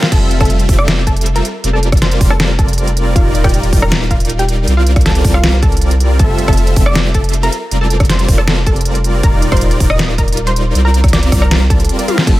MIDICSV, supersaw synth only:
0, 0, Header, 1, 2, 480
1, 0, Start_track
1, 0, Key_signature, -1, "major"
1, 0, Tempo, 379747
1, 152, Time_signature, 4, 2, 24, 8
1, 15672, End_track
2, 0, Start_track
2, 0, Title_t, "Supersaw synth"
2, 0, Program_c, 0, 81
2, 152, Note_on_c, 0, 55, 80
2, 153, Note_on_c, 0, 60, 74
2, 153, Note_on_c, 0, 65, 76
2, 153, Note_on_c, 0, 69, 76
2, 153, Note_on_c, 0, 76, 88
2, 843, Note_off_c, 0, 55, 0
2, 843, Note_off_c, 0, 60, 0
2, 843, Note_off_c, 0, 65, 0
2, 843, Note_off_c, 0, 76, 0
2, 844, Note_off_c, 0, 69, 0
2, 871, Note_on_c, 0, 55, 72
2, 871, Note_on_c, 0, 69, 67
2, 872, Note_on_c, 0, 60, 66
2, 872, Note_on_c, 0, 65, 65
2, 872, Note_on_c, 0, 76, 81
2, 1817, Note_off_c, 0, 55, 0
2, 1817, Note_off_c, 0, 60, 0
2, 1817, Note_off_c, 0, 65, 0
2, 1817, Note_off_c, 0, 69, 0
2, 1817, Note_off_c, 0, 76, 0
2, 2070, Note_on_c, 0, 65, 81
2, 2071, Note_on_c, 0, 55, 86
2, 2071, Note_on_c, 0, 60, 80
2, 2071, Note_on_c, 0, 70, 77
2, 2071, Note_on_c, 0, 74, 94
2, 2762, Note_off_c, 0, 55, 0
2, 2762, Note_off_c, 0, 60, 0
2, 2762, Note_off_c, 0, 65, 0
2, 2762, Note_off_c, 0, 70, 0
2, 2762, Note_off_c, 0, 74, 0
2, 2791, Note_on_c, 0, 55, 76
2, 2791, Note_on_c, 0, 60, 69
2, 2791, Note_on_c, 0, 65, 73
2, 2791, Note_on_c, 0, 70, 73
2, 2791, Note_on_c, 0, 74, 86
2, 3962, Note_off_c, 0, 65, 0
2, 3962, Note_off_c, 0, 74, 0
2, 3963, Note_off_c, 0, 55, 0
2, 3963, Note_off_c, 0, 60, 0
2, 3963, Note_off_c, 0, 70, 0
2, 3990, Note_on_c, 0, 55, 83
2, 3990, Note_on_c, 0, 65, 74
2, 3990, Note_on_c, 0, 70, 80
2, 3990, Note_on_c, 0, 74, 94
2, 3991, Note_on_c, 0, 63, 78
2, 4682, Note_off_c, 0, 55, 0
2, 4682, Note_off_c, 0, 63, 0
2, 4682, Note_off_c, 0, 65, 0
2, 4682, Note_off_c, 0, 70, 0
2, 4682, Note_off_c, 0, 74, 0
2, 4712, Note_on_c, 0, 55, 75
2, 4712, Note_on_c, 0, 63, 69
2, 4712, Note_on_c, 0, 65, 68
2, 4712, Note_on_c, 0, 70, 68
2, 4712, Note_on_c, 0, 74, 81
2, 5883, Note_off_c, 0, 55, 0
2, 5883, Note_off_c, 0, 63, 0
2, 5883, Note_off_c, 0, 65, 0
2, 5883, Note_off_c, 0, 70, 0
2, 5883, Note_off_c, 0, 74, 0
2, 5910, Note_on_c, 0, 70, 79
2, 5910, Note_on_c, 0, 74, 95
2, 5911, Note_on_c, 0, 55, 83
2, 5911, Note_on_c, 0, 60, 79
2, 5911, Note_on_c, 0, 65, 76
2, 6602, Note_off_c, 0, 55, 0
2, 6602, Note_off_c, 0, 60, 0
2, 6602, Note_off_c, 0, 70, 0
2, 6602, Note_off_c, 0, 74, 0
2, 6603, Note_off_c, 0, 65, 0
2, 6630, Note_on_c, 0, 55, 78
2, 6630, Note_on_c, 0, 65, 73
2, 6631, Note_on_c, 0, 60, 71
2, 6631, Note_on_c, 0, 70, 68
2, 6631, Note_on_c, 0, 74, 84
2, 7802, Note_off_c, 0, 55, 0
2, 7802, Note_off_c, 0, 60, 0
2, 7802, Note_off_c, 0, 65, 0
2, 7802, Note_off_c, 0, 70, 0
2, 7802, Note_off_c, 0, 74, 0
2, 7830, Note_on_c, 0, 55, 81
2, 7830, Note_on_c, 0, 60, 77
2, 7830, Note_on_c, 0, 65, 77
2, 7830, Note_on_c, 0, 69, 75
2, 7830, Note_on_c, 0, 76, 93
2, 8522, Note_off_c, 0, 55, 0
2, 8522, Note_off_c, 0, 60, 0
2, 8522, Note_off_c, 0, 65, 0
2, 8522, Note_off_c, 0, 69, 0
2, 8522, Note_off_c, 0, 76, 0
2, 8551, Note_on_c, 0, 60, 66
2, 8551, Note_on_c, 0, 65, 67
2, 8551, Note_on_c, 0, 69, 67
2, 8551, Note_on_c, 0, 76, 82
2, 8552, Note_on_c, 0, 55, 73
2, 9497, Note_off_c, 0, 55, 0
2, 9497, Note_off_c, 0, 60, 0
2, 9497, Note_off_c, 0, 65, 0
2, 9497, Note_off_c, 0, 69, 0
2, 9497, Note_off_c, 0, 76, 0
2, 9752, Note_on_c, 0, 55, 84
2, 9752, Note_on_c, 0, 60, 77
2, 9752, Note_on_c, 0, 65, 77
2, 9752, Note_on_c, 0, 70, 80
2, 9752, Note_on_c, 0, 74, 98
2, 10443, Note_off_c, 0, 55, 0
2, 10443, Note_off_c, 0, 60, 0
2, 10443, Note_off_c, 0, 65, 0
2, 10443, Note_off_c, 0, 70, 0
2, 10443, Note_off_c, 0, 74, 0
2, 10470, Note_on_c, 0, 65, 69
2, 10470, Note_on_c, 0, 70, 70
2, 10471, Note_on_c, 0, 55, 78
2, 10471, Note_on_c, 0, 60, 73
2, 10471, Note_on_c, 0, 74, 85
2, 11642, Note_off_c, 0, 55, 0
2, 11642, Note_off_c, 0, 65, 0
2, 11642, Note_off_c, 0, 70, 0
2, 11642, Note_off_c, 0, 74, 0
2, 11643, Note_off_c, 0, 60, 0
2, 11672, Note_on_c, 0, 55, 80
2, 11672, Note_on_c, 0, 65, 80
2, 11672, Note_on_c, 0, 70, 77
2, 11672, Note_on_c, 0, 74, 95
2, 11673, Note_on_c, 0, 63, 80
2, 12363, Note_off_c, 0, 55, 0
2, 12363, Note_off_c, 0, 63, 0
2, 12363, Note_off_c, 0, 65, 0
2, 12363, Note_off_c, 0, 70, 0
2, 12363, Note_off_c, 0, 74, 0
2, 12391, Note_on_c, 0, 63, 66
2, 12391, Note_on_c, 0, 65, 68
2, 12391, Note_on_c, 0, 74, 83
2, 12392, Note_on_c, 0, 55, 69
2, 12392, Note_on_c, 0, 70, 67
2, 13562, Note_off_c, 0, 74, 0
2, 13563, Note_off_c, 0, 55, 0
2, 13563, Note_off_c, 0, 63, 0
2, 13563, Note_off_c, 0, 65, 0
2, 13563, Note_off_c, 0, 70, 0
2, 13591, Note_on_c, 0, 55, 86
2, 13591, Note_on_c, 0, 60, 81
2, 13591, Note_on_c, 0, 65, 79
2, 13591, Note_on_c, 0, 70, 82
2, 13591, Note_on_c, 0, 74, 95
2, 14282, Note_off_c, 0, 55, 0
2, 14282, Note_off_c, 0, 74, 0
2, 14283, Note_off_c, 0, 60, 0
2, 14283, Note_off_c, 0, 65, 0
2, 14283, Note_off_c, 0, 70, 0
2, 14310, Note_on_c, 0, 55, 76
2, 14310, Note_on_c, 0, 60, 71
2, 14310, Note_on_c, 0, 65, 72
2, 14310, Note_on_c, 0, 70, 69
2, 14310, Note_on_c, 0, 74, 87
2, 15127, Note_off_c, 0, 60, 0
2, 15127, Note_off_c, 0, 65, 0
2, 15127, Note_off_c, 0, 70, 0
2, 15127, Note_off_c, 0, 74, 0
2, 15128, Note_off_c, 0, 55, 0
2, 15152, Note_on_c, 0, 55, 80
2, 15152, Note_on_c, 0, 60, 73
2, 15152, Note_on_c, 0, 65, 70
2, 15152, Note_on_c, 0, 70, 69
2, 15152, Note_on_c, 0, 74, 86
2, 15242, Note_off_c, 0, 55, 0
2, 15242, Note_off_c, 0, 60, 0
2, 15242, Note_off_c, 0, 65, 0
2, 15242, Note_off_c, 0, 70, 0
2, 15242, Note_off_c, 0, 74, 0
2, 15270, Note_on_c, 0, 60, 78
2, 15271, Note_on_c, 0, 55, 88
2, 15271, Note_on_c, 0, 65, 79
2, 15271, Note_on_c, 0, 70, 76
2, 15271, Note_on_c, 0, 77, 92
2, 15418, Note_off_c, 0, 60, 0
2, 15419, Note_off_c, 0, 55, 0
2, 15419, Note_off_c, 0, 65, 0
2, 15419, Note_off_c, 0, 70, 0
2, 15419, Note_off_c, 0, 77, 0
2, 15510, Note_on_c, 0, 65, 79
2, 15510, Note_on_c, 0, 69, 77
2, 15511, Note_on_c, 0, 55, 85
2, 15511, Note_on_c, 0, 60, 77
2, 15511, Note_on_c, 0, 76, 90
2, 15672, Note_off_c, 0, 55, 0
2, 15672, Note_off_c, 0, 60, 0
2, 15672, Note_off_c, 0, 65, 0
2, 15672, Note_off_c, 0, 69, 0
2, 15672, Note_off_c, 0, 76, 0
2, 15672, End_track
0, 0, End_of_file